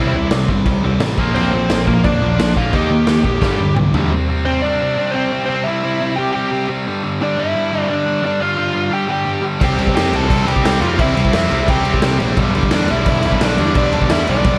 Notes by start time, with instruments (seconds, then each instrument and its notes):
Already playing: picked electric bass C2, overdriven electric guitar C3 G3 C4, lead electric guitar E4 E5
0.14 picked electric bass C2, overdriven electric guitar C3 G3
0.31 picked electric bass C2, overdriven electric guitar C3 G3, snare, crash
0.48 picked electric bass G1, overdriven electric guitar C3 G3, kick
0.66 picked electric bass C2, overdriven electric guitar C3 G3, kick, crash
0.83 picked electric bass C2, overdriven electric guitar C3 G3, distorted electric guitar C4
1.00 picked electric bass A1, overdriven electric guitar C3 G3, distorted electric guitar C4, snare, crash
1.18 picked electric bass A#1, overdriven electric guitar A#2 F3 A#3, kick
1.35 picked electric bass A#1, overdriven electric guitar A#2 F3 A#3, lead electric guitar C4 C5, crash
1.54 picked electric bass A#1, overdriven electric guitar A#2 F3
1.70 picked electric bass A#1, overdriven electric guitar A#2 F3, snare, crash
1.87 overdriven electric guitar A#2 F3, lead electric guitar A#3 A#4, kick
2.04 picked electric bass F2, overdriven electric guitar A#2 F3, lead electric guitar D4 D5, kick, crash
2.08 distorted electric guitar A#3
2.22 picked electric bass A#1, overdriven electric guitar A#2 F3, distorted electric guitar A#3
2.39 picked electric bass A#1, overdriven electric guitar A#2 F3, snare, crash
2.56 picked electric bass A#1, overdriven electric guitar A#2 F3 A#3, lead electric guitar F4 F5, kick
2.73 picked electric bass D#2, overdriven electric guitar D#3 A#3 D#4, lead electric guitar G4 G5, kick, crash
2.90 picked electric bass D#2, overdriven electric guitar D#3 A#3
3.07 picked electric bass D#2, overdriven electric guitar D#3 A#3, snare, crash
3.24 picked electric bass A#1, overdriven electric guitar D#3 A#3, kick
3.41 picked electric bass G1, overdriven electric guitar G2 D3 G3, kick, snare
3.59 picked electric bass G1, overdriven electric guitar G2 D3
3.76 picked electric bass C2, overdriven electric guitar G2 D3, mid tom
3.93 picked electric bass D2, overdriven electric guitar G2 D3 G3, floor tom
4.11 overdriven electric guitar C3 G3 C4
4.29 overdriven electric guitar C3 G3 C4
4.45 overdriven electric guitar C3 G3 C4, lead electric guitar C4 C5
4.62 overdriven electric guitar C3 G3 C4, lead electric guitar D4 D5
4.81 overdriven electric guitar C3 G3 C4
4.97 overdriven electric guitar C3 G3 C4
5.11 overdriven electric guitar C3, lead electric guitar C4 C5
5.16 overdriven electric guitar G3 C4
5.32 overdriven electric guitar C3 G3 C4
5.46 overdriven electric guitar C3, lead electric guitar C4 C5
5.50 overdriven electric guitar G3 C4
5.64 overdriven electric guitar C3 C4, lead electric guitar E5
5.68 overdriven electric guitar G3, lead electric guitar E4
5.84 overdriven electric guitar C3 G3 C4
6.00 overdriven electric guitar C3 G3 C4
6.16 overdriven electric guitar C3 G3 C4, lead electric guitar G4 G5
6.33 overdriven electric guitar C3 G3 C4, lead electric guitar G4 G5
6.51 overdriven electric guitar C3 G3 C4
6.69 overdriven electric guitar C3 G3 C4
6.87 overdriven electric guitar G2 D3 G3
7.03 overdriven electric guitar G2 D3 G3
7.21 overdriven electric guitar G2 D3 G3, lead electric guitar D4 D5
7.38 overdriven electric guitar G2 D3 G3, lead electric guitar E4 E5
7.55 overdriven electric guitar G2 D3 G3
7.72 overdriven electric guitar G2 D3 G3
7.81 lead electric guitar D5
7.89 overdriven electric guitar G2 D3 G3, lead electric guitar D4 D5
8.06 overdriven electric guitar G2 D3 G3
8.22 overdriven electric guitar G2 D3 G3, lead electric guitar D4
8.26 lead electric guitar D5
8.40 overdriven electric guitar G2 D3 G3, lead electric guitar F4 F5
8.57 overdriven electric guitar G2 D3 G3
8.74 overdriven electric guitar G2 D3 G3
8.91 overdriven electric guitar G2 D3 G3, lead electric guitar G4 G5
9.08 overdriven electric guitar G2 D3 G3, lead electric guitar G4 G5
9.25 overdriven electric guitar G2 D3 G3
9.42 overdriven electric guitar G2 D3 G3
9.61 picked electric bass C2, overdriven electric guitar C3 G3 C4, lead electric guitar G4 G5, kick, crash
9.78 picked electric bass C2, overdriven electric guitar C3 G3 C4, crash
9.87 kick
9.95 picked electric bass F2, overdriven electric guitar C3 G3 C4, lead electric guitar G4 G5, snare, crash
10.11 picked electric bass C2, overdriven electric guitar C3 G3 C4, crash
10.16 lead electric guitar A4 A5
10.28 picked electric bass C2, overdriven electric guitar C3 G3 C4, kick, crash
10.45 picked electric bass C2, overdriven electric guitar C3 G3 C4, lead electric guitar G4 G5, crash
10.56 kick
10.62 picked electric bass C2, overdriven electric guitar C3 G3 C4, lead electric guitar G4, snare, crash
10.66 lead electric guitar G5
10.80 picked electric bass F2, overdriven electric guitar C3 G3 C4, lead electric guitar F4 F5, crash
10.96 picked electric bass C2, overdriven electric guitar C3 G3 C4, lead electric guitar E5, kick, crash
11.02 lead electric guitar E4
11.15 picked electric bass C2, overdriven electric guitar C3 G3 C4, crash
11.25 kick
11.33 picked electric bass F2, overdriven electric guitar C3 G3 C4, lead electric guitar E4 E5, snare, crash
11.49 picked electric bass C2, overdriven electric guitar C3 G3 C4, crash
11.65 picked electric bass C2, overdriven electric guitar C3 G3 C4, kick, crash
11.70 lead electric guitar G4 G5
11.83 picked electric bass C2, overdriven electric guitar C3 G3 C4, crash
11.94 kick
12.02 picked electric bass C2, overdriven electric guitar C3 G3 C4, snare, crash
12.19 picked electric bass A#1, overdriven electric guitar C3 G3 C4, crash
12.36 picked electric bass B1, overdriven electric guitar G2 D3 G3, kick, crash
12.54 picked electric bass B1, overdriven electric guitar G2 D3 G3, crash
12.63 kick
12.71 picked electric bass E2, overdriven electric guitar G2 D3 G3, lead electric guitar D5, snare, crash
12.75 lead electric guitar D4
12.88 picked electric bass B1, overdriven electric guitar G2 D3 G3, lead electric guitar E4 E5, crash
13.06 picked electric bass B1, overdriven electric guitar G2 D3 G3, kick, crash
13.23 picked electric bass B1, overdriven electric guitar G2 D3 G3, crash
13.32 kick
13.41 picked electric bass B1, overdriven electric guitar G2 D3 G3, lead electric guitar D4 D5, snare, crash
13.58 picked electric bass E2, overdriven electric guitar G2 D3 G3, crash
13.75 picked electric bass B1, overdriven electric guitar G2 D3 G3, lead electric guitar D4 D5, kick, crash
13.92 picked electric bass B1, overdriven electric guitar G2 D3 G3, crash
14.02 kick
14.09 picked electric bass E2, overdriven electric guitar G2 D3 G3, lead electric guitar E4 E5, snare, crash
14.27 picked electric bass B1, overdriven electric guitar G2 D3 G3, lead electric guitar D4 D5, crash
14.44 picked electric bass B1, overdriven electric guitar G2 D3 G3, kick, crash